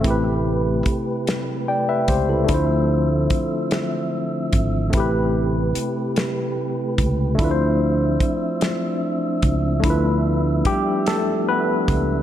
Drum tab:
HH |x-xx-x|x-xx-x|x-xx-x|x-xx-x|
SD |---o--|---o--|---o--|---o--|
BD |o-o--o|o-o--o|o----o|o-o--o|

HH |x-xx-x|
SD |---o--|
BD |o-o--o|